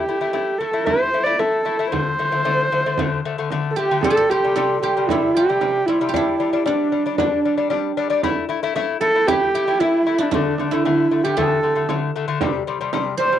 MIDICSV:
0, 0, Header, 1, 5, 480
1, 0, Start_track
1, 0, Tempo, 524476
1, 1763, Time_signature, 4, 2, 24, 8
1, 12255, End_track
2, 0, Start_track
2, 0, Title_t, "Guzheng"
2, 0, Program_c, 0, 107
2, 3443, Note_on_c, 0, 67, 81
2, 3699, Note_on_c, 0, 69, 79
2, 3753, Note_off_c, 0, 67, 0
2, 3756, Note_on_c, 0, 67, 77
2, 3815, Note_off_c, 0, 69, 0
2, 3818, Note_on_c, 0, 69, 87
2, 3941, Note_off_c, 0, 67, 0
2, 3944, Note_on_c, 0, 67, 74
2, 4166, Note_off_c, 0, 69, 0
2, 4170, Note_on_c, 0, 69, 81
2, 4420, Note_off_c, 0, 67, 0
2, 4423, Note_on_c, 0, 67, 80
2, 4677, Note_on_c, 0, 64, 79
2, 4907, Note_off_c, 0, 67, 0
2, 4911, Note_on_c, 0, 67, 84
2, 5376, Note_off_c, 0, 64, 0
2, 5379, Note_on_c, 0, 64, 63
2, 5568, Note_off_c, 0, 67, 0
2, 5571, Note_on_c, 0, 67, 67
2, 5636, Note_off_c, 0, 64, 0
2, 5640, Note_on_c, 0, 64, 79
2, 6107, Note_on_c, 0, 62, 65
2, 6175, Note_off_c, 0, 69, 0
2, 6581, Note_off_c, 0, 62, 0
2, 6584, Note_on_c, 0, 62, 66
2, 7724, Note_off_c, 0, 67, 0
2, 8024, Note_off_c, 0, 64, 0
2, 8244, Note_on_c, 0, 69, 81
2, 8496, Note_on_c, 0, 67, 103
2, 8736, Note_off_c, 0, 67, 0
2, 8740, Note_on_c, 0, 67, 78
2, 8970, Note_on_c, 0, 64, 75
2, 9142, Note_off_c, 0, 62, 0
2, 9320, Note_on_c, 0, 62, 75
2, 9434, Note_off_c, 0, 62, 0
2, 9438, Note_on_c, 0, 62, 78
2, 9799, Note_off_c, 0, 64, 0
2, 9803, Note_on_c, 0, 64, 76
2, 10250, Note_off_c, 0, 69, 0
2, 10289, Note_off_c, 0, 67, 0
2, 10292, Note_on_c, 0, 67, 80
2, 10403, Note_on_c, 0, 69, 83
2, 11996, Note_off_c, 0, 62, 0
2, 12058, Note_on_c, 0, 72, 84
2, 12187, Note_off_c, 0, 64, 0
2, 12255, Note_off_c, 0, 67, 0
2, 12255, Note_off_c, 0, 69, 0
2, 12255, Note_off_c, 0, 72, 0
2, 12255, End_track
3, 0, Start_track
3, 0, Title_t, "Horsehead fiddle"
3, 0, Program_c, 1, 110
3, 0, Note_on_c, 1, 67, 83
3, 535, Note_on_c, 1, 69, 83
3, 548, Note_off_c, 1, 67, 0
3, 781, Note_on_c, 1, 72, 101
3, 795, Note_off_c, 1, 69, 0
3, 1132, Note_on_c, 1, 74, 95
3, 1146, Note_off_c, 1, 72, 0
3, 1276, Note_on_c, 1, 69, 91
3, 1290, Note_off_c, 1, 74, 0
3, 1740, Note_off_c, 1, 69, 0
3, 1746, Note_on_c, 1, 72, 93
3, 3164, Note_off_c, 1, 72, 0
3, 3392, Note_on_c, 1, 69, 59
3, 3447, Note_on_c, 1, 67, 98
3, 3460, Note_off_c, 1, 69, 0
3, 3689, Note_off_c, 1, 67, 0
3, 3700, Note_on_c, 1, 69, 100
3, 3936, Note_on_c, 1, 67, 99
3, 3950, Note_off_c, 1, 69, 0
3, 4412, Note_off_c, 1, 67, 0
3, 4417, Note_on_c, 1, 67, 83
3, 4651, Note_on_c, 1, 64, 93
3, 4665, Note_off_c, 1, 67, 0
3, 4895, Note_on_c, 1, 67, 93
3, 4909, Note_off_c, 1, 64, 0
3, 5365, Note_on_c, 1, 64, 92
3, 5379, Note_off_c, 1, 67, 0
3, 5609, Note_off_c, 1, 64, 0
3, 5620, Note_on_c, 1, 64, 84
3, 6102, Note_on_c, 1, 62, 83
3, 6116, Note_off_c, 1, 64, 0
3, 6565, Note_off_c, 1, 62, 0
3, 6570, Note_on_c, 1, 62, 69
3, 7016, Note_off_c, 1, 62, 0
3, 8254, Note_on_c, 1, 69, 108
3, 8484, Note_on_c, 1, 67, 100
3, 8498, Note_off_c, 1, 69, 0
3, 8977, Note_on_c, 1, 64, 105
3, 8991, Note_off_c, 1, 67, 0
3, 9355, Note_on_c, 1, 62, 86
3, 9369, Note_off_c, 1, 64, 0
3, 9459, Note_off_c, 1, 62, 0
3, 9469, Note_on_c, 1, 62, 84
3, 9827, Note_on_c, 1, 64, 97
3, 9841, Note_off_c, 1, 62, 0
3, 10285, Note_on_c, 1, 67, 87
3, 10299, Note_off_c, 1, 64, 0
3, 10411, Note_on_c, 1, 69, 91
3, 10425, Note_off_c, 1, 67, 0
3, 10884, Note_off_c, 1, 69, 0
3, 12072, Note_on_c, 1, 72, 94
3, 12255, Note_off_c, 1, 72, 0
3, 12255, End_track
4, 0, Start_track
4, 0, Title_t, "Lute"
4, 0, Program_c, 2, 24
4, 78, Note_on_c, 2, 57, 69
4, 82, Note_on_c, 2, 64, 71
4, 172, Note_off_c, 2, 57, 0
4, 172, Note_off_c, 2, 64, 0
4, 189, Note_on_c, 2, 57, 73
4, 195, Note_on_c, 2, 64, 70
4, 289, Note_off_c, 2, 57, 0
4, 290, Note_off_c, 2, 64, 0
4, 304, Note_on_c, 2, 57, 91
4, 308, Note_on_c, 2, 64, 90
4, 503, Note_off_c, 2, 57, 0
4, 503, Note_off_c, 2, 64, 0
4, 554, Note_on_c, 2, 57, 70
4, 555, Note_on_c, 2, 64, 69
4, 651, Note_off_c, 2, 64, 0
4, 652, Note_off_c, 2, 57, 0
4, 671, Note_on_c, 2, 57, 68
4, 674, Note_on_c, 2, 64, 71
4, 771, Note_off_c, 2, 57, 0
4, 771, Note_off_c, 2, 64, 0
4, 791, Note_on_c, 2, 64, 91
4, 793, Note_on_c, 2, 57, 84
4, 987, Note_off_c, 2, 64, 0
4, 988, Note_off_c, 2, 57, 0
4, 1040, Note_on_c, 2, 57, 61
4, 1044, Note_on_c, 2, 64, 64
4, 1136, Note_off_c, 2, 57, 0
4, 1138, Note_off_c, 2, 64, 0
4, 1152, Note_on_c, 2, 57, 62
4, 1156, Note_on_c, 2, 64, 73
4, 1252, Note_off_c, 2, 57, 0
4, 1254, Note_off_c, 2, 64, 0
4, 1274, Note_on_c, 2, 64, 85
4, 1276, Note_on_c, 2, 57, 81
4, 1470, Note_off_c, 2, 64, 0
4, 1471, Note_off_c, 2, 57, 0
4, 1512, Note_on_c, 2, 57, 64
4, 1517, Note_on_c, 2, 64, 74
4, 1614, Note_off_c, 2, 57, 0
4, 1614, Note_off_c, 2, 64, 0
4, 1639, Note_on_c, 2, 57, 71
4, 1644, Note_on_c, 2, 64, 78
4, 1738, Note_off_c, 2, 57, 0
4, 1739, Note_off_c, 2, 64, 0
4, 1758, Note_on_c, 2, 50, 92
4, 1759, Note_on_c, 2, 57, 90
4, 1953, Note_off_c, 2, 50, 0
4, 1953, Note_off_c, 2, 57, 0
4, 2004, Note_on_c, 2, 50, 74
4, 2009, Note_on_c, 2, 57, 74
4, 2101, Note_off_c, 2, 50, 0
4, 2101, Note_off_c, 2, 57, 0
4, 2122, Note_on_c, 2, 50, 74
4, 2126, Note_on_c, 2, 57, 69
4, 2220, Note_off_c, 2, 50, 0
4, 2221, Note_off_c, 2, 57, 0
4, 2242, Note_on_c, 2, 50, 81
4, 2245, Note_on_c, 2, 57, 103
4, 2437, Note_off_c, 2, 50, 0
4, 2437, Note_off_c, 2, 57, 0
4, 2491, Note_on_c, 2, 50, 76
4, 2494, Note_on_c, 2, 57, 82
4, 2585, Note_off_c, 2, 50, 0
4, 2586, Note_off_c, 2, 57, 0
4, 2620, Note_on_c, 2, 50, 75
4, 2620, Note_on_c, 2, 57, 86
4, 2709, Note_off_c, 2, 57, 0
4, 2710, Note_off_c, 2, 50, 0
4, 2735, Note_on_c, 2, 50, 105
4, 2737, Note_on_c, 2, 57, 99
4, 2924, Note_off_c, 2, 50, 0
4, 2924, Note_off_c, 2, 57, 0
4, 2977, Note_on_c, 2, 50, 71
4, 2978, Note_on_c, 2, 57, 88
4, 3069, Note_off_c, 2, 50, 0
4, 3069, Note_off_c, 2, 57, 0
4, 3096, Note_on_c, 2, 50, 80
4, 3100, Note_on_c, 2, 57, 91
4, 3189, Note_off_c, 2, 50, 0
4, 3190, Note_off_c, 2, 57, 0
4, 3217, Note_on_c, 2, 50, 98
4, 3222, Note_on_c, 2, 57, 108
4, 3406, Note_off_c, 2, 50, 0
4, 3408, Note_off_c, 2, 57, 0
4, 3459, Note_on_c, 2, 50, 71
4, 3466, Note_on_c, 2, 57, 80
4, 3551, Note_off_c, 2, 50, 0
4, 3554, Note_off_c, 2, 57, 0
4, 3581, Note_on_c, 2, 50, 86
4, 3582, Note_on_c, 2, 57, 102
4, 3671, Note_off_c, 2, 57, 0
4, 3672, Note_off_c, 2, 50, 0
4, 3698, Note_on_c, 2, 48, 90
4, 3703, Note_on_c, 2, 55, 105
4, 3887, Note_off_c, 2, 48, 0
4, 3888, Note_off_c, 2, 55, 0
4, 3942, Note_on_c, 2, 48, 75
4, 3942, Note_on_c, 2, 55, 74
4, 4032, Note_off_c, 2, 55, 0
4, 4033, Note_off_c, 2, 48, 0
4, 4067, Note_on_c, 2, 55, 74
4, 4068, Note_on_c, 2, 48, 75
4, 4155, Note_off_c, 2, 55, 0
4, 4156, Note_off_c, 2, 48, 0
4, 4180, Note_on_c, 2, 55, 97
4, 4186, Note_on_c, 2, 48, 98
4, 4368, Note_off_c, 2, 55, 0
4, 4371, Note_off_c, 2, 48, 0
4, 4415, Note_on_c, 2, 48, 76
4, 4418, Note_on_c, 2, 55, 73
4, 4510, Note_off_c, 2, 48, 0
4, 4510, Note_off_c, 2, 55, 0
4, 4546, Note_on_c, 2, 48, 78
4, 4550, Note_on_c, 2, 55, 80
4, 4635, Note_off_c, 2, 48, 0
4, 4637, Note_off_c, 2, 55, 0
4, 4669, Note_on_c, 2, 55, 98
4, 4673, Note_on_c, 2, 48, 87
4, 4853, Note_off_c, 2, 55, 0
4, 4855, Note_off_c, 2, 48, 0
4, 4909, Note_on_c, 2, 48, 65
4, 4911, Note_on_c, 2, 55, 69
4, 4996, Note_off_c, 2, 55, 0
4, 4997, Note_off_c, 2, 48, 0
4, 5027, Note_on_c, 2, 48, 77
4, 5031, Note_on_c, 2, 55, 77
4, 5116, Note_off_c, 2, 48, 0
4, 5117, Note_off_c, 2, 55, 0
4, 5135, Note_on_c, 2, 48, 80
4, 5140, Note_on_c, 2, 55, 90
4, 5326, Note_off_c, 2, 48, 0
4, 5328, Note_off_c, 2, 55, 0
4, 5388, Note_on_c, 2, 48, 69
4, 5393, Note_on_c, 2, 55, 83
4, 5476, Note_off_c, 2, 48, 0
4, 5477, Note_off_c, 2, 55, 0
4, 5501, Note_on_c, 2, 55, 93
4, 5506, Note_on_c, 2, 48, 79
4, 5593, Note_off_c, 2, 55, 0
4, 5595, Note_off_c, 2, 48, 0
4, 5617, Note_on_c, 2, 55, 105
4, 5620, Note_on_c, 2, 62, 97
4, 5806, Note_off_c, 2, 55, 0
4, 5808, Note_off_c, 2, 62, 0
4, 5857, Note_on_c, 2, 55, 76
4, 5857, Note_on_c, 2, 62, 84
4, 5950, Note_off_c, 2, 62, 0
4, 5951, Note_off_c, 2, 55, 0
4, 5976, Note_on_c, 2, 55, 68
4, 5978, Note_on_c, 2, 62, 88
4, 6070, Note_off_c, 2, 55, 0
4, 6071, Note_off_c, 2, 62, 0
4, 6092, Note_on_c, 2, 55, 97
4, 6094, Note_on_c, 2, 62, 98
4, 6284, Note_off_c, 2, 55, 0
4, 6284, Note_off_c, 2, 62, 0
4, 6334, Note_on_c, 2, 55, 65
4, 6336, Note_on_c, 2, 62, 67
4, 6428, Note_off_c, 2, 62, 0
4, 6429, Note_off_c, 2, 55, 0
4, 6459, Note_on_c, 2, 55, 74
4, 6466, Note_on_c, 2, 62, 83
4, 6552, Note_off_c, 2, 55, 0
4, 6554, Note_off_c, 2, 62, 0
4, 6573, Note_on_c, 2, 55, 85
4, 6574, Note_on_c, 2, 62, 106
4, 6764, Note_off_c, 2, 55, 0
4, 6764, Note_off_c, 2, 62, 0
4, 6821, Note_on_c, 2, 55, 64
4, 6821, Note_on_c, 2, 62, 72
4, 6911, Note_off_c, 2, 62, 0
4, 6912, Note_off_c, 2, 55, 0
4, 6932, Note_on_c, 2, 55, 74
4, 6934, Note_on_c, 2, 62, 77
4, 7028, Note_off_c, 2, 55, 0
4, 7028, Note_off_c, 2, 62, 0
4, 7047, Note_on_c, 2, 55, 100
4, 7055, Note_on_c, 2, 62, 111
4, 7241, Note_off_c, 2, 55, 0
4, 7243, Note_off_c, 2, 62, 0
4, 7295, Note_on_c, 2, 55, 78
4, 7297, Note_on_c, 2, 62, 100
4, 7388, Note_off_c, 2, 62, 0
4, 7389, Note_off_c, 2, 55, 0
4, 7411, Note_on_c, 2, 55, 90
4, 7415, Note_on_c, 2, 62, 105
4, 7506, Note_off_c, 2, 55, 0
4, 7508, Note_off_c, 2, 62, 0
4, 7537, Note_on_c, 2, 57, 119
4, 7540, Note_on_c, 2, 64, 127
4, 7725, Note_off_c, 2, 57, 0
4, 7726, Note_off_c, 2, 64, 0
4, 7767, Note_on_c, 2, 57, 81
4, 7775, Note_on_c, 2, 64, 91
4, 7865, Note_off_c, 2, 57, 0
4, 7866, Note_off_c, 2, 64, 0
4, 7897, Note_on_c, 2, 57, 89
4, 7901, Note_on_c, 2, 64, 105
4, 7989, Note_off_c, 2, 57, 0
4, 7991, Note_off_c, 2, 64, 0
4, 8013, Note_on_c, 2, 57, 110
4, 8020, Note_on_c, 2, 64, 126
4, 8203, Note_off_c, 2, 57, 0
4, 8204, Note_off_c, 2, 64, 0
4, 8250, Note_on_c, 2, 57, 72
4, 8253, Note_on_c, 2, 64, 76
4, 8345, Note_off_c, 2, 57, 0
4, 8345, Note_off_c, 2, 64, 0
4, 8378, Note_on_c, 2, 57, 68
4, 8382, Note_on_c, 2, 64, 70
4, 8469, Note_off_c, 2, 57, 0
4, 8470, Note_off_c, 2, 64, 0
4, 8492, Note_on_c, 2, 57, 91
4, 8494, Note_on_c, 2, 64, 101
4, 8680, Note_off_c, 2, 64, 0
4, 8681, Note_off_c, 2, 57, 0
4, 8733, Note_on_c, 2, 57, 67
4, 8737, Note_on_c, 2, 64, 78
4, 8825, Note_off_c, 2, 57, 0
4, 8827, Note_off_c, 2, 64, 0
4, 8853, Note_on_c, 2, 57, 73
4, 8859, Note_on_c, 2, 64, 80
4, 8946, Note_off_c, 2, 57, 0
4, 8947, Note_off_c, 2, 64, 0
4, 8977, Note_on_c, 2, 57, 89
4, 8977, Note_on_c, 2, 64, 95
4, 9162, Note_off_c, 2, 64, 0
4, 9163, Note_off_c, 2, 57, 0
4, 9212, Note_on_c, 2, 64, 80
4, 9216, Note_on_c, 2, 57, 67
4, 9304, Note_off_c, 2, 64, 0
4, 9306, Note_off_c, 2, 57, 0
4, 9335, Note_on_c, 2, 57, 83
4, 9338, Note_on_c, 2, 64, 86
4, 9425, Note_off_c, 2, 57, 0
4, 9427, Note_off_c, 2, 64, 0
4, 9461, Note_on_c, 2, 57, 106
4, 9464, Note_on_c, 2, 50, 95
4, 9644, Note_off_c, 2, 57, 0
4, 9645, Note_off_c, 2, 50, 0
4, 9696, Note_on_c, 2, 50, 75
4, 9700, Note_on_c, 2, 57, 82
4, 9785, Note_off_c, 2, 50, 0
4, 9787, Note_off_c, 2, 57, 0
4, 9817, Note_on_c, 2, 50, 75
4, 9822, Note_on_c, 2, 57, 84
4, 9906, Note_off_c, 2, 50, 0
4, 9907, Note_off_c, 2, 57, 0
4, 9932, Note_on_c, 2, 50, 94
4, 9937, Note_on_c, 2, 57, 98
4, 10118, Note_off_c, 2, 50, 0
4, 10121, Note_off_c, 2, 57, 0
4, 10170, Note_on_c, 2, 50, 61
4, 10173, Note_on_c, 2, 57, 74
4, 10261, Note_off_c, 2, 57, 0
4, 10262, Note_off_c, 2, 50, 0
4, 10288, Note_on_c, 2, 50, 68
4, 10290, Note_on_c, 2, 57, 79
4, 10380, Note_off_c, 2, 50, 0
4, 10380, Note_off_c, 2, 57, 0
4, 10409, Note_on_c, 2, 50, 93
4, 10410, Note_on_c, 2, 57, 101
4, 10596, Note_off_c, 2, 50, 0
4, 10596, Note_off_c, 2, 57, 0
4, 10645, Note_on_c, 2, 50, 61
4, 10650, Note_on_c, 2, 57, 64
4, 10738, Note_off_c, 2, 50, 0
4, 10740, Note_off_c, 2, 57, 0
4, 10757, Note_on_c, 2, 50, 66
4, 10764, Note_on_c, 2, 57, 74
4, 10855, Note_off_c, 2, 50, 0
4, 10856, Note_off_c, 2, 57, 0
4, 10882, Note_on_c, 2, 50, 91
4, 10888, Note_on_c, 2, 57, 98
4, 11072, Note_off_c, 2, 50, 0
4, 11074, Note_off_c, 2, 57, 0
4, 11125, Note_on_c, 2, 50, 77
4, 11129, Note_on_c, 2, 57, 93
4, 11218, Note_off_c, 2, 50, 0
4, 11219, Note_off_c, 2, 57, 0
4, 11237, Note_on_c, 2, 50, 99
4, 11239, Note_on_c, 2, 57, 94
4, 11333, Note_off_c, 2, 50, 0
4, 11333, Note_off_c, 2, 57, 0
4, 11361, Note_on_c, 2, 48, 107
4, 11361, Note_on_c, 2, 55, 119
4, 11549, Note_off_c, 2, 55, 0
4, 11551, Note_off_c, 2, 48, 0
4, 11599, Note_on_c, 2, 48, 77
4, 11603, Note_on_c, 2, 55, 89
4, 11694, Note_off_c, 2, 48, 0
4, 11694, Note_off_c, 2, 55, 0
4, 11721, Note_on_c, 2, 48, 91
4, 11725, Note_on_c, 2, 55, 100
4, 11815, Note_off_c, 2, 48, 0
4, 11815, Note_off_c, 2, 55, 0
4, 11832, Note_on_c, 2, 48, 108
4, 11839, Note_on_c, 2, 55, 126
4, 12025, Note_off_c, 2, 48, 0
4, 12029, Note_off_c, 2, 55, 0
4, 12073, Note_on_c, 2, 48, 71
4, 12078, Note_on_c, 2, 55, 73
4, 12170, Note_off_c, 2, 48, 0
4, 12172, Note_off_c, 2, 55, 0
4, 12196, Note_on_c, 2, 48, 71
4, 12196, Note_on_c, 2, 55, 74
4, 12255, Note_off_c, 2, 48, 0
4, 12255, Note_off_c, 2, 55, 0
4, 12255, End_track
5, 0, Start_track
5, 0, Title_t, "Frame drum"
5, 201, Note_on_c, 9, 64, 24
5, 292, Note_off_c, 9, 64, 0
5, 317, Note_on_c, 9, 64, 53
5, 408, Note_off_c, 9, 64, 0
5, 563, Note_on_c, 9, 64, 25
5, 655, Note_off_c, 9, 64, 0
5, 798, Note_on_c, 9, 64, 66
5, 889, Note_off_c, 9, 64, 0
5, 1164, Note_on_c, 9, 64, 20
5, 1255, Note_off_c, 9, 64, 0
5, 1284, Note_on_c, 9, 64, 50
5, 1376, Note_off_c, 9, 64, 0
5, 1767, Note_on_c, 9, 64, 70
5, 1858, Note_off_c, 9, 64, 0
5, 2130, Note_on_c, 9, 64, 23
5, 2221, Note_off_c, 9, 64, 0
5, 2256, Note_on_c, 9, 64, 50
5, 2348, Note_off_c, 9, 64, 0
5, 2487, Note_on_c, 9, 64, 23
5, 2578, Note_off_c, 9, 64, 0
5, 2723, Note_on_c, 9, 64, 71
5, 2814, Note_off_c, 9, 64, 0
5, 3089, Note_on_c, 9, 64, 19
5, 3181, Note_off_c, 9, 64, 0
5, 3207, Note_on_c, 9, 64, 53
5, 3298, Note_off_c, 9, 64, 0
5, 3684, Note_on_c, 9, 64, 75
5, 3776, Note_off_c, 9, 64, 0
5, 4060, Note_on_c, 9, 64, 24
5, 4151, Note_off_c, 9, 64, 0
5, 4172, Note_on_c, 9, 64, 58
5, 4263, Note_off_c, 9, 64, 0
5, 4412, Note_on_c, 9, 64, 27
5, 4503, Note_off_c, 9, 64, 0
5, 4655, Note_on_c, 9, 64, 76
5, 4747, Note_off_c, 9, 64, 0
5, 5020, Note_on_c, 9, 64, 27
5, 5112, Note_off_c, 9, 64, 0
5, 5136, Note_on_c, 9, 64, 63
5, 5228, Note_off_c, 9, 64, 0
5, 5616, Note_on_c, 9, 64, 73
5, 5708, Note_off_c, 9, 64, 0
5, 5981, Note_on_c, 9, 64, 26
5, 6073, Note_off_c, 9, 64, 0
5, 6097, Note_on_c, 9, 64, 62
5, 6189, Note_off_c, 9, 64, 0
5, 6343, Note_on_c, 9, 64, 27
5, 6435, Note_off_c, 9, 64, 0
5, 6572, Note_on_c, 9, 64, 78
5, 6664, Note_off_c, 9, 64, 0
5, 6938, Note_on_c, 9, 64, 26
5, 7030, Note_off_c, 9, 64, 0
5, 7059, Note_on_c, 9, 64, 56
5, 7151, Note_off_c, 9, 64, 0
5, 7534, Note_on_c, 9, 64, 74
5, 7625, Note_off_c, 9, 64, 0
5, 7893, Note_on_c, 9, 64, 27
5, 7985, Note_off_c, 9, 64, 0
5, 8017, Note_on_c, 9, 64, 60
5, 8108, Note_off_c, 9, 64, 0
5, 8250, Note_on_c, 9, 64, 28
5, 8342, Note_off_c, 9, 64, 0
5, 8494, Note_on_c, 9, 64, 74
5, 8585, Note_off_c, 9, 64, 0
5, 8849, Note_on_c, 9, 64, 24
5, 8940, Note_off_c, 9, 64, 0
5, 8975, Note_on_c, 9, 64, 56
5, 9067, Note_off_c, 9, 64, 0
5, 9442, Note_on_c, 9, 64, 76
5, 9534, Note_off_c, 9, 64, 0
5, 9686, Note_on_c, 9, 64, 55
5, 9777, Note_off_c, 9, 64, 0
5, 9818, Note_on_c, 9, 64, 23
5, 9909, Note_off_c, 9, 64, 0
5, 9941, Note_on_c, 9, 64, 57
5, 10033, Note_off_c, 9, 64, 0
5, 10175, Note_on_c, 9, 64, 29
5, 10267, Note_off_c, 9, 64, 0
5, 10411, Note_on_c, 9, 64, 70
5, 10502, Note_off_c, 9, 64, 0
5, 10772, Note_on_c, 9, 64, 27
5, 10864, Note_off_c, 9, 64, 0
5, 10880, Note_on_c, 9, 64, 64
5, 10971, Note_off_c, 9, 64, 0
5, 11355, Note_on_c, 9, 64, 82
5, 11447, Note_off_c, 9, 64, 0
5, 11712, Note_on_c, 9, 64, 27
5, 11803, Note_off_c, 9, 64, 0
5, 11833, Note_on_c, 9, 64, 73
5, 11924, Note_off_c, 9, 64, 0
5, 12255, End_track
0, 0, End_of_file